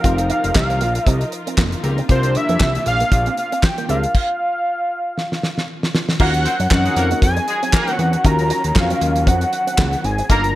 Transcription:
Already playing: F3 D#4 A#4 F5
0.04 F1 C4 D#4 F4 G4 A#4, kick, closed hi-hat
0.18 muted clean electric guitar stroke, closed hi-hat
0.30 D#4 F5, closed hi-hat
0.44 F1, closed hi-hat
0.55 C2 F5, muted clean electric guitar stroke, kick, snare, clap
0.70 C4, closed hi-hat
0.81 A#1 A#3, closed hi-hat
0.95 closed hi-hat
1.07 C2 C4 D#5, kick, closed hi-hat
1.21 closed hi-hat
1.32 muted clean electric guitar stroke, closed hi-hat
1.47 C4, closed hi-hat
1.58 F1 A#3, kick, snare, clap
1.72 closed hi-hat
1.83 C#2 C4 D#4 G4 A#4, muted clean electric guitar stroke, closed hi-hat
1.98 C4, closed hi-hat
2.09 C2 C3 A#3 C4 D4 F4 G4 A#4 C5, kick, closed hi-hat
2.23 closed hi-hat
2.35 E5, muted clean electric guitar stroke, closed hi-hat
2.49 F2 A#3, closed hi-hat
2.60 C2 C4, kick, snare, clap
2.75 closed hi-hat
2.86 A#1 F5, muted clean electric guitar stroke, closed hi-hat
3.00 A#3, closed hi-hat
3.12 A#1, kick, closed hi-hat
3.26 C4, closed hi-hat
3.37 F5, muted clean electric guitar stroke, closed hi-hat
3.52 C4, closed hi-hat
3.63 G5, muted clean electric guitar stroke, kick, snare, clap
3.78 A#3, closed hi-hat
3.89 C#2 C4 D4 F4 G4 A#4 F5, closed hi-hat
4.03 closed hi-hat
4.15 kick, crash
5.18 snare
5.32 snare
5.43 snare
5.58 snare
5.83 snare
5.95 snare
6.09 snare
6.20 D#2 D#3 F#3 A#3 C#4 D#4 F4 F#4 A#4 F#5, kick, crash
6.34 closed hi-hat
6.46 C4 C5, muted clean electric guitar stroke, closed hi-hat
6.60 F#2 C#4, closed hi-hat
6.70 F#2 C4 C#4 D#4 F#4 A#4 F#5, kick, snare, clap
6.85 G#3 G#4, closed hi-hat
6.96 F2 A#3 A#4, muted clean electric guitar stroke, closed hi-hat
7.11 A#3, closed hi-hat
7.22 F2 G#5, kick, closed hi-hat
7.37 C4, closed hi-hat
7.48 G#3 G#4, muted clean electric guitar stroke, closed hi-hat
7.63 C4, closed hi-hat
7.73 A#3 A#4, muted clean electric guitar stroke, kick, snare, clap
7.88 A#3, closed hi-hat
7.92 F#5
7.99 E2 C4, closed hi-hat
8.13 closed hi-hat
8.24 D#2 C#4 D#4 F4 F#4 A#4 A#5, kick, closed hi-hat
8.39 muted clean electric guitar stroke, closed hi-hat
8.50 C#4, closed hi-hat
8.64 D#2, closed hi-hat
8.75 F2 C#4 F4 F#4 G#4 F5, muted clean electric guitar stroke, kick, snare, clap
8.82 A#4
8.90 C4, closed hi-hat
9.01 D#2 A#3, closed hi-hat
9.16 closed hi-hat
9.27 F2 C4 F#5, kick, closed hi-hat
9.41 closed hi-hat
9.53 muted clean electric guitar stroke, closed hi-hat
9.67 C4, closed hi-hat
9.78 C#2 A#3, kick, snare, clap
9.93 closed hi-hat
10.04 G#1 G#5, muted clean electric guitar stroke, closed hi-hat
10.18 C4, closed hi-hat
10.29 G1 G3 A#3 D4 D#4 F4 A4 A#4 A5 A#5, kick, closed hi-hat
10.44 closed hi-hat

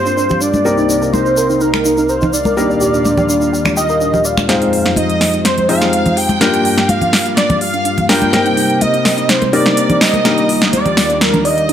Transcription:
Already playing: G2 G3 A#3 D4 F4 A#4 C5 F5
0.06 D4, shaker
0.17 D4, shaker
0.29 G4, low conga, shaker
0.41 D4 D5, shaker
0.53 D4, high conga, shaker
0.65 C2 C3 G3 A#3 C4 D#4 A#4, shaker
0.78 D#4, shaker
0.89 D#4, shaker
1.02 A#4, shaker
1.13 D#4 C5, high conga, shaker
1.26 D#4, shaker
1.37 A#4, shaker
1.50 D#4, shaker
1.61 D#4 A#4, shaker
1.74 A#4, finger snap, high conga, shaker
1.85 D#4, shaker
1.97 D#4, shaker
2.09 A#4 C5, shaker
2.21 D#4, low conga, shaker
2.33 D#4 D5, shaker
2.45 A#4, high conga, shaker
2.57 D#2 A#2 G3 A#3 D4 D#4 F4 A#4, shaker
2.70 D4, shaker
2.81 G4, shaker
2.94 D4, shaker
3.05 D4, high conga, shaker
3.18 G4, low conga, shaker
3.29 D4, shaker
3.41 D4, shaker
3.53 G4, shaker
3.65 D4, finger snap, high conga, low conga, shaker
3.77 G4 D#5, shaker
3.89 A#4, shaker
4.01 D4, shaker
4.14 G4, low conga, shaker
4.25 D5 F5, shaker
4.37 D4, finger snap, high conga, shaker
4.49 F2 F3 G#3 C4 D#4 F4 G4 C5 D#5, snare, closed hi-hat
4.61 D#4, closed hi-hat
4.73 G#4, open hi-hat
4.86 D#4, snare, closed hi-hat
4.96 D#4 D#5, closed hi-hat, high conga
5.09 G#4, closed hi-hat
5.21 D#4, snare, open hi-hat
5.33 D#4, closed hi-hat
5.45 G#4 C5, snare, closed hi-hat
5.58 D#4, closed hi-hat, high conga
5.69 G#3 C4 D#4 F4 C5 F5, open hi-hat
5.81 G#4, snare, closed hi-hat
5.93 closed hi-hat
6.06 closed hi-hat, low conga
6.17 G#4 G5, open hi-hat
6.29 D#4, closed hi-hat, high conga
6.41 G2 G3 A#3 D4 F4 A#4 D6, snare, closed hi-hat
6.54 G4, closed hi-hat
6.65 D4, open hi-hat
6.78 D4, snare, closed hi-hat
6.89 G4 F5, closed hi-hat, high conga
7.01 D4, closed hi-hat, low conga
7.13 D4, snare, open hi-hat
7.26 G4, closed hi-hat
7.37 D4 D5, snare, closed hi-hat
7.50 D4, closed hi-hat, high conga, low conga
7.61 G4 F5, open hi-hat
7.74 D4, closed hi-hat
7.85 D4, closed hi-hat
7.98 G4, closed hi-hat, low conga
8.09 G3 A#3 D4 F4 A#4 G5, snare, open hi-hat
8.22 D4, closed hi-hat, high conga
8.33 C3 G3 A#3 C4 D#4 A#4, snare, closed hi-hat
8.46 D#4, closed hi-hat
8.57 D#4, open hi-hat
8.70 A#4, closed hi-hat
8.81 D#4 D#5, closed hi-hat, high conga
8.94 D#4, closed hi-hat
9.05 A#4, snare, open hi-hat
9.18 D#4, closed hi-hat
9.29 D#4 C5, snare, closed hi-hat
9.42 A#4, closed hi-hat, high conga
9.53 G3 A#3 C4 D#4 A#4 D5, open hi-hat
9.66 D#4, snare, closed hi-hat
9.77 A#4, closed hi-hat
9.90 D#4, closed hi-hat, low conga
10.01 D#4 D#5, snare, open hi-hat
10.13 A#4, closed hi-hat, high conga
10.25 D#2 D#3 G3 A#3 D4 D#4 F4 A#4, snare, closed hi-hat
10.38 D4, closed hi-hat
10.49 G4, open hi-hat
10.62 D4, snare, closed hi-hat
10.73 D4 D5, closed hi-hat, high conga
10.86 G4, closed hi-hat, low conga
10.97 D4, snare, open hi-hat
11.10 D4, closed hi-hat
11.21 G4 A#4, snare, closed hi-hat
11.33 D4, closed hi-hat, high conga, low conga
11.45 D5 D#5, open hi-hat
11.58 D#5, closed hi-hat
11.69 D#4, closed hi-hat

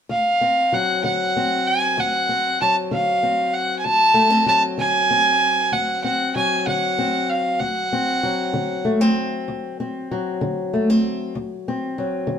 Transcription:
0.09 D2 F5
0.41 C4
0.73 F#3 F#5
1.04 D3 F#5
1.37 C4
1.67 G#5
1.97 D2 F#5
2.29 C4
2.61 F#3 A5
2.91 D3 F5
3.23 C4
3.54 F#5
3.79 G#5
3.84 D2 A5
4.14 A3
4.30 C4
4.46 F#3 A5
4.78 D3 G#5
5.11 C4
5.72 D2 F#5
6.04 C4 F#5
6.36 F#3 G#5
6.67 D3 F#5
6.99 C4
7.29 F5
7.59 D2 F#5
7.93 C4
8.23 F#3
8.53 D3
8.85 A3
9.01 C4
9.48 D2
9.80 C4
10.11 F#3
10.41 D3
10.73 A3
10.90 C4
11.35 D2
11.68 C4
11.98 F#3
12.27 D3

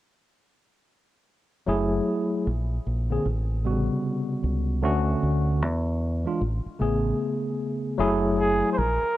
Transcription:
1.67 F#1 F#3 A3 E4 G#4
2.47 A#1
2.86 A#1
3.10 D3 A#3 C4 G#4
3.25 A1
3.64 C3 G3 B3 F#4
3.71 C#3
4.44 C#2
4.82 D2 D3 A3 C#4 F#4
5.23 D2
5.62 E2
6.25 E3 G#3 D4 F4
6.41 A1
6.66 muted fingered electric bass stroke
6.79 A1 C#3 A3 B3 G#4
7.98 F#1 F#3 A3 E4 G#4
8.39 G#4
8.72 C5
8.78 A#1 A#4
9.03 muted fingered electric bass stroke

